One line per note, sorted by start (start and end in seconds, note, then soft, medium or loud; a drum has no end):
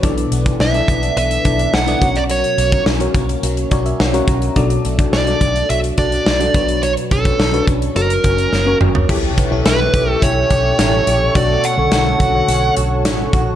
0.03 0.24 B1 medium
0.03 0.84 B2 medium
0.03 1.16 E3 medium
0.03 0.31 D4 medium
0.03 0.31 E4 medium
0.03 0.32 A4 medium
0.03 0.32 D5 medium
0.03 kick medium
0.03 closed hi-hat medium
0.18 closed hi-hat soft
0.31 0.52 B1 medium
0.31 0.87 B3 medium
0.31 closed hi-hat medium
0.45 0.64 D4 medium
0.45 0.65 E4 medium
0.45 0.65 A4 medium
0.45 0.65 D5 medium
0.45 kick loud
0.45 closed hi-hat medium
0.60 0.80 B1 medium
0.60 1.44 D4 medium
0.60 1.17 E5 medium
0.60 snare medium
0.74 1.21 D4 medium
0.74 1.21 E4 medium
0.74 1.21 A4 medium
0.74 1.21 D5 medium
0.74 closed hi-hat soft
0.88 1.09 B1 medium
0.88 1.73 B3 medium
0.88 kick medium
0.88 closed hi-hat medium
1.03 closed hi-hat soft
1.16 1.37 B1 medium
1.16 2.01 E3 medium
1.16 1.76 E5 medium
1.16 closed hi-hat medium
1.31 closed hi-hat medium
1.44 1.66 B1 medium
1.44 1.73 D4 medium
1.44 2.07 D4 medium
1.44 1.73 E4 medium
1.44 1.73 A4 medium
1.44 1.73 D5 medium
1.44 kick medium
1.44 closed hi-hat medium
1.59 closed hi-hat soft
1.73 1.94 B1 medium
1.73 1.87 A3 medium
1.73 2.18 F#5 medium
1.73 snare loud
1.87 2.07 B3 soft
1.87 2.01 D4 medium
1.87 2.01 E4 medium
1.87 2.02 A4 medium
1.87 2.02 D5 medium
1.87 closed hi-hat soft
2.01 2.42 B1 medium
2.01 2.82 B2 medium
2.01 2.30 F#3 medium
2.01 2.58 C#4 medium
2.01 2.58 F#4 medium
2.01 2.58 A#4 medium
2.01 2.59 C#5 medium
2.01 kick medium
2.01 closed hi-hat medium
2.16 2.22 D5 medium
2.16 closed hi-hat soft
2.30 3.43 F#3 medium
2.30 2.83 C#5 medium
2.30 closed hi-hat medium
2.44 closed hi-hat soft
2.58 2.78 B1 medium
2.58 3.14 A#3 medium
2.58 closed hi-hat medium
2.72 2.91 C#4 medium
2.72 2.91 F#4 medium
2.72 2.91 A#4 medium
2.72 2.91 C#5 medium
2.72 kick loud
2.72 closed hi-hat medium
2.86 3.07 B1 loud
2.86 3.71 C#4 medium
2.86 snare medium
3.00 3.47 C#4 medium
3.00 3.47 F#4 medium
3.00 3.47 A#4 medium
3.00 3.48 C#5 medium
3.00 closed hi-hat soft
3.14 3.35 B1 medium
3.14 3.99 A#3 medium
3.14 kick medium
3.14 closed hi-hat medium
3.29 closed hi-hat medium
3.43 3.63 B1 medium
3.43 4.28 F#3 medium
3.43 closed hi-hat medium
3.57 closed hi-hat medium
3.71 3.92 B1 medium
3.71 3.99 C#4 medium
3.71 4.62 C#4 medium
3.71 3.99 F#4 medium
3.71 4.00 A#4 medium
3.71 4.00 C#5 medium
3.71 3.84 D5 medium
3.71 kick medium
3.71 closed hi-hat medium
3.86 3.99 E5 medium
3.86 closed hi-hat soft
4.00 4.20 B1 medium
4.00 4.62 A#3 medium
4.00 4.26 F#5 medium
4.00 snare loud
4.13 4.42 C#4 medium
4.13 4.42 F#4 medium
4.13 4.42 A#4 medium
4.13 4.42 C#5 medium
4.13 closed hi-hat soft
4.28 4.48 B1 loud
4.28 4.56 F#3 medium
4.28 4.54 A#5 medium
4.28 kick loud
4.28 closed hi-hat medium
4.42 closed hi-hat soft
4.56 4.77 B1 medium
4.56 5.37 B2 medium
4.56 5.69 F#3 medium
4.56 4.84 D4 medium
4.56 4.84 F#4 medium
4.56 4.85 A4 medium
4.56 4.85 D5 loud
4.56 kick medium
4.56 closed hi-hat medium
4.70 closed hi-hat soft
4.85 5.05 B1 medium
4.85 5.40 A3 medium
4.85 closed hi-hat medium
4.98 5.17 D4 medium
4.98 5.17 F#4 medium
4.98 5.18 A4 medium
4.98 5.18 D5 medium
4.98 kick loud
4.98 closed hi-hat medium
5.13 5.33 B1 loud
5.13 5.97 D4 medium
5.13 5.70 D5 medium
5.13 snare loud
5.27 5.74 D4 medium
5.27 5.74 F#4 medium
5.27 5.74 A4 medium
5.27 5.74 D5 medium
5.27 closed hi-hat soft
5.41 5.61 B1 medium
5.41 6.25 A3 medium
5.41 kick medium
5.41 closed hi-hat medium
5.56 closed hi-hat soft
5.70 5.90 B1 medium
5.70 6.54 F#3 medium
5.70 5.78 E5 loud
5.70 closed hi-hat medium
5.84 closed hi-hat soft
5.98 6.18 B1 medium
5.98 6.26 D4 medium
5.98 6.60 D4 medium
5.98 6.26 F#4 medium
5.98 6.26 A4 medium
5.98 6.83 D5 loud
5.98 6.26 D5 medium
5.98 kick medium
5.98 closed hi-hat medium
6.12 closed hi-hat soft
6.26 6.47 B1 medium
6.26 6.60 A3 medium
6.26 snare loud
6.40 6.53 D4 medium
6.40 6.53 F#4 medium
6.40 6.55 A4 medium
6.40 6.55 D5 medium
6.40 closed hi-hat medium
6.54 6.95 B1 medium
6.54 7.36 B2 medium
6.54 6.82 F#3 medium
6.54 7.11 D4 medium
6.54 7.11 F#4 medium
6.54 7.11 B4 medium
6.54 7.12 C#5 medium
6.54 kick loud
6.54 closed hi-hat medium
6.68 closed hi-hat medium
6.82 7.95 F#3 medium
6.82 6.91 C#5 medium
6.82 closed hi-hat medium
6.97 closed hi-hat soft
7.11 7.32 B1 medium
7.11 7.67 C#4 medium
7.11 7.64 A4 medium
7.11 kick medium
7.11 closed hi-hat medium
7.25 7.44 D4 medium
7.25 7.44 F#4 medium
7.25 7.44 B4 medium
7.25 7.44 C#5 medium
7.25 kick loud
7.25 closed hi-hat medium
7.39 7.60 B1 loud
7.39 8.02 D4 medium
7.39 snare loud
7.53 7.96 D4 medium
7.53 7.95 F#4 medium
7.53 7.96 B4 medium
7.53 7.96 C#5 medium
7.53 closed hi-hat soft
7.67 7.88 B1 medium
7.67 8.24 C#4 medium
7.67 kick medium
7.67 closed hi-hat medium
7.82 closed hi-hat medium
7.96 8.16 F#1 medium
7.96 8.80 F#3 medium
7.96 8.18 C#4 medium
7.96 8.19 F#4 medium
7.96 8.77 A#4 loud
7.96 8.19 A#4 medium
7.96 8.19 C#5 medium
7.96 closed hi-hat medium
8.10 closed hi-hat medium
8.24 8.45 F#1 medium
8.24 8.52 C#4 medium
8.24 9.37 C#4 medium
8.24 8.52 F#4 medium
8.24 8.52 A#4 medium
8.24 8.53 C#5 medium
8.24 kick medium
8.24 closed hi-hat medium
8.38 closed hi-hat soft
8.53 8.73 F#1 loud
8.53 9.15 A#3 medium
8.53 snare medium
8.66 8.94 C#4 medium
8.66 8.95 F#4 medium
8.66 8.95 A#4 medium
8.66 8.95 C#5 medium
8.81 9.01 F#1 medium
8.81 9.09 F#3 medium
8.81 mid tom medium
8.95 floor tom medium
9.09 9.30 B1 loud
9.09 9.90 B2 medium
9.09 11.36 E3 medium
9.09 9.37 E4 medium
9.09 9.37 G4 medium
9.09 9.93 G4 medium
9.09 13.55 A4 medium
9.09 9.37 A4 medium
9.09 9.37 C#5 medium
9.09 11.33 E5 medium
9.09 11.33 G5 medium
9.09 13.55 C#6 medium
9.09 kick medium
9.09 crash medium
9.37 9.52 B3 medium
9.37 kick medium
9.37 closed hi-hat medium
9.51 9.62 B1 medium
9.51 10.21 C#4 soft
9.51 9.98 E4 medium
9.51 9.98 G4 medium
9.51 9.98 A4 medium
9.51 9.99 C#5 medium
9.66 9.86 B1 loud
9.66 11.35 A3 medium
9.66 10.11 B4 medium
9.66 snare loud
9.66 closed hi-hat medium
9.94 10.14 B1 medium
9.94 10.49 G4 medium
9.94 kick medium
9.94 closed hi-hat medium
10.11 10.24 A4 medium
10.22 10.43 B1 loud
10.22 10.78 C#4 medium
10.22 10.97 E4 medium
10.22 10.97 G4 medium
10.22 10.97 A4 medium
10.22 11.36 C#5 medium
10.22 10.97 C#5 medium
10.22 kick medium
10.22 closed hi-hat medium
10.50 10.71 B1 medium
10.50 11.06 G4 medium
10.50 kick medium
10.50 closed hi-hat medium
10.79 10.99 A1 medium
10.79 11.63 C#4 medium
10.79 snare loud
10.79 closed hi-hat medium
11.07 11.27 A#1 medium
11.07 11.35 G4 medium
11.07 closed hi-hat medium
11.35 11.56 B1 loud
11.35 12.16 B2 medium
11.35 11.91 A3 medium
11.35 11.63 D4 medium
11.35 11.63 F#4 medium
11.35 12.20 F#4 medium
11.35 11.64 A4 medium
11.35 13.55 C#5 medium
11.35 11.64 C#5 medium
11.35 11.65 D5 medium
11.35 13.55 F#5 medium
11.35 kick loud
11.35 closed hi-hat medium
11.64 12.47 C#4 medium
11.64 11.92 F#5 loud
11.64 closed hi-hat medium
11.77 11.88 B1 medium
11.77 12.15 D3 medium
11.77 12.15 F#4 medium
11.77 12.16 A4 medium
11.77 12.16 C#5 medium
11.92 12.12 B1 loud
11.92 13.55 A3 medium
11.92 12.74 F#5 medium
11.92 snare medium
11.92 closed hi-hat medium
12.20 12.41 B1 medium
12.20 12.77 F#4 medium
12.20 kick medium
12.20 closed hi-hat medium
12.34 13.09 D3 medium
12.34 13.09 F#4 medium
12.34 13.10 A4 medium
12.34 13.10 C#5 medium
12.48 12.69 B1 loud
12.48 13.04 C#4 medium
12.48 closed hi-hat medium
12.77 13.05 B1 medium
12.77 13.33 F#4 medium
12.77 closed hi-hat medium
13.05 13.26 A1 medium
13.05 13.55 C#4 medium
13.05 snare loud
13.05 closed hi-hat loud
13.33 13.54 A#1 medium
13.33 13.55 F#4 medium
13.33 kick loud
13.33 closed hi-hat medium